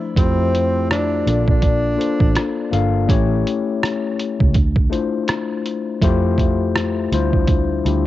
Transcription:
Already playing: F3 A3 D4 E4 C5
0.16 F2 A3 C4 E4 F4 G4 C5, kick, closed hi-hat
0.55 closed hi-hat
0.91 D4, cross-stick, closed hi-hat
1.26 A#1 A#3 D4 F4 A4 D5, closed hi-hat
1.48 D4, kick
1.62 kick, closed hi-hat
1.96 A#3 D4 F4 A4 C5
2.01 closed hi-hat
2.20 A1, kick
2.35 cross-stick, closed hi-hat
2.71 G1 A#3 D4 F4 A4 F5, closed hi-hat
3.08 A1 A3 C#4 E4 G4 C#5, kick, closed hi-hat
3.47 closed hi-hat
3.83 cross-stick, closed hi-hat
4.20 closed hi-hat
4.40 C#2, kick
4.54 D2, kick, closed hi-hat
4.76 kick
4.89 A3 D4 E4 F4 C5, closed hi-hat
5.28 cross-stick, closed hi-hat
5.66 closed hi-hat
6.02 F2 A3 E4 F4 G4 C5, kick, closed hi-hat
6.38 kick, closed hi-hat
6.76 cross-stick, closed hi-hat
7.12 D2 G3 D4 E4 F4 C5, closed hi-hat
7.33 kick
7.47 kick, closed hi-hat
7.84 D2 G3 D4 E4 F4 G4, closed hi-hat

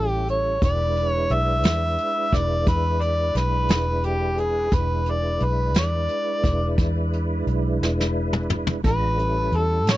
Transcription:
Already playing: A1 G3 C#4 E4 A4
0.09 G4
0.28 C#5, closed hi-hat
0.62 E1 G#3 D4 E4 B4 D5, kick, closed hi-hat
0.97 closed hi-hat
1.08 C#5
1.30 B1 E5, closed hi-hat
1.63 E2, snare, closed hi-hat
1.98 closed hi-hat
2.32 E1 D5, kick, snare, closed hi-hat
2.67 E2 B4, kick, closed hi-hat
3.01 D5, closed hi-hat
3.35 B1 B4, snare, closed hi-hat
3.69 E1, snare, closed hi-hat
4.04 G4, closed hi-hat
4.38 G#4, closed hi-hat
4.72 E1 G#3 D4 E4 B4, kick, closed hi-hat
5.06 closed hi-hat
5.11 D5
5.40 B1 B4, closed hi-hat
5.74 E2, snare, closed hi-hat
5.79 D5
6.09 closed hi-hat
6.44 E1, kick, closed hi-hat
6.78 E2, kick, closed hi-hat
7.13 closed hi-hat
7.47 B1, closed hi-hat
7.81 E1, snare
8.00 snare
8.33 mid tom
8.50 mid tom
8.67 floor tom
8.83 A1 G#3 D4 F4 B4 A#5, kick, closed hi-hat
9.18 G3 C#4 E4 A4, closed hi-hat
9.52 E2, closed hi-hat
9.56 A4
9.86 A2, snare, closed hi-hat
9.91 C#5

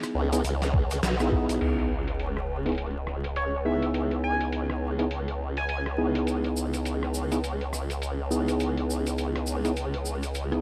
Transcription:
Already playing: B3 D#4 E4 G#4
0.03 cross-stick, closed hi-hat, cabasa
0.15 C#2
0.33 B3 D#4 E4 G#4, closed hi-hat, cabasa
0.44 C#2, closed hi-hat, cabasa
0.62 snare, closed hi-hat, cabasa
0.74 kick
0.91 closed hi-hat, cabasa
1.03 B1, snare, closed hi-hat, cabasa
1.20 B3 D#4 E4 G#4, cross-stick, cabasa
1.32 B3 D#4 E4 G#4, kick
1.49 B1, closed hi-hat, cabasa
1.61 C#2, closed hi-hat, crash, sub drop
1.79 closed hi-hat
2.08 closed hi-hat
2.20 closed hi-hat
2.37 cross-stick
2.66 B3 D#4 E4 G#4, closed hi-hat
2.69 closed hi-hat
2.72 closed hi-hat
2.75 closed hi-hat
2.78 closed hi-hat
2.86 closed hi-hat
2.91 closed hi-hat
3.07 cross-stick
3.24 closed hi-hat
3.36 C#5, closed hi-hat
3.65 B3 D#4 E4 G#4 E5
3.82 closed hi-hat
3.94 closed hi-hat
4.11 closed hi-hat
4.24 G#5
4.41 closed hi-hat
4.53 closed hi-hat
4.70 cross-stick
4.99 B3 D#4 E4 G#4, closed hi-hat
5.11 closed hi-hat
5.28 closed hi-hat
5.57 G#5, closed hi-hat
5.69 G#5, closed hi-hat
5.86 cross-stick
5.98 B3 D#4 E4 G#4
6.15 closed hi-hat
6.27 closed hi-hat, cabasa
6.44 closed hi-hat
6.57 cabasa
6.74 closed hi-hat, cabasa
6.85 closed hi-hat, cabasa
7.03 cross-stick
7.14 cabasa
7.32 B3 D#4 E4 G#4, closed hi-hat, cabasa
7.44 closed hi-hat, cabasa
7.61 closed hi-hat
7.73 cross-stick, cabasa
7.90 closed hi-hat, cabasa
8.02 closed hi-hat, cabasa
8.31 B3 D#4 E4 G#4, cabasa
8.48 closed hi-hat, cabasa
8.60 closed hi-hat, cabasa
8.77 closed hi-hat
8.90 cabasa
9.07 closed hi-hat, cabasa
9.18 closed hi-hat, cabasa
9.36 cross-stick, closed hi-hat
9.47 cabasa
9.64 B3 D#4 E4 G#4, closed hi-hat, cabasa
9.77 closed hi-hat, cabasa
9.94 closed hi-hat
10.06 cabasa
10.23 closed hi-hat, cabasa
10.35 closed hi-hat, cabasa
10.52 B3 D#4 E4 G#4, cross-stick

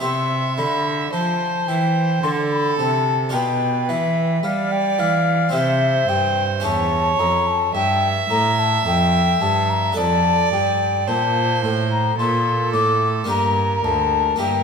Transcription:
0.00 C3 C4 E4 G4 E5 C6
0.58 D3 B5
1.13 F3 C5 A5
1.68 E3 G5
2.23 D3 A4 C6
2.52 B5
2.79 C3 A5
3.29 D4 F4 G4
3.34 B2 B4 G5
3.89 E3 E5
4.43 G3 D5 F5
4.72 G5
4.99 E3 F5
5.49 C4 E4 G4
5.54 C3 C5 E5
6.09 G2 G5
6.60 E2 C#4 E4 G4 A5
6.64 E2 C#5
7.19 F2 A#5
7.47 A5
7.75 G2 E5 G5
8.30 A2 A#5
8.59 A5
8.86 F2 G5
9.41 G2 A5
9.70 A#5
9.92 D4 A4
9.97 F2 D5 A5
10.52 G2 G5
11.07 A#2 C5 A5
11.63 A2
11.91 A#5
12.18 A#2 A4 C6
12.73 A2 D6
13.24 A#3 D4 G4
13.28 G2 A#4 A#5
13.84 D2 A5
14.36 A#3 E4 G4
14.40 G2 A#4 G5

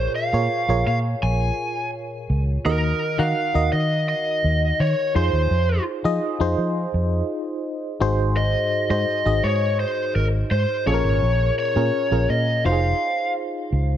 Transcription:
Already playing: A#2 F4 G#4 A#4 C5 C#5
0.16 F5
0.33 A#2 F4 G#4 A#4 C#5
0.68 A#1 F4 G#4 A#4 C#5
0.87 A#2 F5
1.23 A#1 G#5
2.30 C#2
2.65 D#2 D#3 D#4 F#4 A#4 D#5
3.18 D#3 D#4 F#4 A#4 F5 F#5
3.54 D#2 D#4 F#4 A#4 D#5
3.72 D#3 D#5
4.09 D#5
4.44 D#2
4.80 D#3 C#5
5.15 F2 D#4 F4 G#4 C5
5.33 D#2
5.51 F2
6.04 F3 D#4 F4 G#4 D#5
6.40 F2 D#4 F4 G#4 C5
6.58 F3
6.94 F2
8.00 G#1 G#2 D#4 F#4 G#4 C5
8.37 D#5
8.90 G#2 D#4 F#4 G#4 C5 D#5
9.25 G#1 D#4 F#4 G#4 D#5
9.44 G#2 C#5
9.80 C5
10.15 G#1 A#4
10.51 G#2 C5
10.86 A#1 A#2 C#4 F4 G#4 A4 C#5
10.94 A#4
11.04 G#1
11.22 A#1
11.59 C#5
11.76 A#2 C#4 F4 G#4 A#4
12.11 A#1 C#4 F4 G#4 A#4
12.29 A#2 D#5
12.65 F1 D#4 F4 F#4 C5 F5
12.72 G#4
13.72 C#2

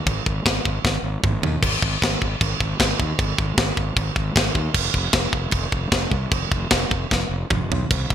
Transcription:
0.06 G#1, kick, china
0.26 G#1, kick
0.45 G#1, kick, snare, china
0.65 G#1, kick
0.84 G#1, kick, snare
1.03 G#1
1.24 G#1, kick, mid tom
1.42 D#2, floor tom
1.63 G#1, kick, crash, china
1.82 G#1, kick
2.02 G#1, kick, snare, china
2.22 G#1, kick
2.41 G#1, kick, china
2.60 G#1, kick
2.80 G#1, kick, snare, china
3.00 D#2, kick
3.19 G#1, kick, china
3.38 G#1, kick
3.57 G#1, kick, snare, china
3.77 G#1, kick
3.96 G#1, kick, china
4.16 G#1, kick
4.36 G#1, kick, snare, china
4.55 D#2, kick
4.74 F1, kick, china, crash
4.94 F1, kick
5.13 F1, kick, snare, china
5.33 F1, kick
5.51 F1, kick, china
5.72 F1, kick
5.91 F1, kick, snare, china
6.11 C2, kick
6.31 F1, kick, china
6.51 F1, kick
6.71 F1, kick, snare, china
6.90 F1, kick
7.11 F1, kick, snare
7.29 F1
7.50 F1, kick, mid tom
7.70 B1, floor tom
7.91 C2, kick, crash
8.10 C2, kick

